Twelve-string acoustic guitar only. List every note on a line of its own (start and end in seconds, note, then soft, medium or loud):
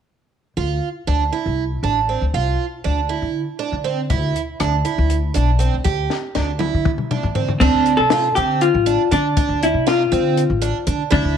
0.57 0.88 F4 medium
1.07 1.23 D4 medium
1.33 1.64 E4 medium
1.84 1.99 D4 medium
2.09 2.24 C4 soft
2.34 2.65 F4 medium
2.84 3.00 D4 medium
3.09 3.40 E4 medium
3.59 3.75 D4 medium
3.84 4.00 C4 medium
4.10 4.41 E4 medium
4.60 4.75 D4 medium
4.85 5.16 E4 medium
5.34 5.50 D4 medium
5.59 5.75 C4 medium
5.84 6.15 G4 medium
6.35 6.50 D4 medium
6.59 6.90 E4 medium
7.11 7.26 D4 medium
7.35 7.51 C4 medium
7.61 7.92 D4 medium
8.12 8.27 F4 medium
8.37 8.67 C4 medium
8.86 9.02 D4 medium
9.11 9.27 D4 medium
9.37 9.67 D4 medium
9.87 10.02 F4 medium
10.12 10.42 C4 medium
10.62 10.77 D4 medium
10.87 11.02 D4 medium
11.11 11.37 E4 medium